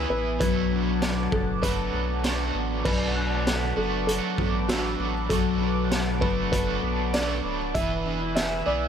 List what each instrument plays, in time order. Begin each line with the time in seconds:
Already playing: overdriven electric guitar E3 B3 E4 G#4, clean electric guitar E4 G#4, analog synth pad B4 E5 G#5 E6, felt piano C#5, glockenspiel G#6 B6
0.10 sub bass A1, clean electric guitar B3, felt piano B4
0.39 sub bass B1, overdriven electric guitar B2 F#3 A3, clean electric guitar F#3, felt piano B4, analog synth pad F#5 A5 D6, glockenspiel G#6, kick, closed hi-hat
0.43 overdriven electric guitar D4 F#4
0.61 glockenspiel B6
0.72 clean electric guitar D4
1.02 clean electric guitar A4, snare, closed hi-hat
1.32 sub bass F#1, clean electric guitar B3, felt piano A4, kick
1.62 overdriven electric guitar F#3 A3 D4 F#4, clean electric guitar A4, felt piano B4, kick, closed hi-hat
1.93 sub bass B1, clean electric guitar B3
2.24 overdriven electric guitar F#3 A3 D4 F#4, clean electric guitar D4, snare, closed hi-hat
2.55 sub bass A1, clean electric guitar B3
2.84 sub bass B1, overdriven electric guitar B2 F#3 A3 D4 F#4, clean electric guitar F#3, felt piano B4, analog synth pad B4 F#5 A5 D6, kick, crash
3.16 clean electric guitar D4, glockenspiel F#6
3.36 glockenspiel A6
3.47 clean electric guitar A4, snare, closed hi-hat
3.57 glockenspiel B6
3.76 sub bass F#1, overdriven electric guitar A3 D4 F#4, clean electric guitar B3, felt piano A4
4.07 overdriven electric guitar F#3 A3 D4 F#4, felt piano A4, clean electric guitar A4, closed hi-hat
4.38 sub bass A1, clean electric guitar B3, kick
4.68 overdriven electric guitar F#3 A3 D4, clean electric guitar D4, felt piano F#4, glockenspiel E6, snare, closed hi-hat
4.72 overdriven electric guitar F#4
5.00 sub bass A1, clean electric guitar B3
5.29 sub bass B1, overdriven electric guitar B2 F#3 A3 D4 F#4, clean electric guitar F#3, felt piano A4, kick, closed hi-hat
5.61 clean electric guitar D4
5.91 clean electric guitar A4, snare, closed hi-hat
6.21 sub bass F#1, clean electric guitar B3, overdriven electric guitar D4 F#4, felt piano B4, kick
6.25 overdriven electric guitar A3
6.52 overdriven electric guitar F#3 A3 D4 F#4, clean electric guitar A4, felt piano B4, kick, closed hi-hat
6.83 sub bass B1, clean electric guitar B3
7.13 overdriven electric guitar F#3 A3 D4 F#4, clean electric guitar D4, felt piano D5, snare, closed hi-hat
7.44 sub bass D1, clean electric guitar B3
7.74 sub bass E1, overdriven electric guitar E3 B3 E4 G#4, clean electric guitar E3, felt piano E5, analog synth pad E5 G#5 E6, kick, closed hi-hat
8.06 clean electric guitar D4
8.20 clean electric guitar E4
8.35 clean electric guitar G#4, felt piano E5, snare, closed hi-hat
8.66 sub bass B1, clean electric guitar B3, overdriven electric guitar E4 G#4, felt piano D5
8.70 overdriven electric guitar B3